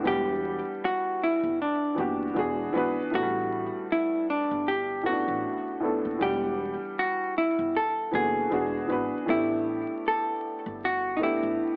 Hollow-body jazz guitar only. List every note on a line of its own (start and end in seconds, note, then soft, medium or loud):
0.07 0.85 G4 loud
0.85 1.23 F#4 medium
1.23 1.61 E4 medium
1.62 2.71 D4 medium
3.15 3.87 F#4 loud
3.92 4.27 E4 medium
4.30 4.68 D4 medium
4.68 5.06 G4 loud
5.06 5.78 F#4 medium
6.22 6.99 G4 medium
6.99 7.34 F#4 medium
7.38 7.76 E4 medium
7.76 8.14 A4 loud
8.15 8.86 G#4 loud
9.30 10.08 E4 loud
10.08 10.85 A4 loud
10.85 11.17 F#4 medium
11.17 11.21 D#4 medium
11.23 11.76 E4 medium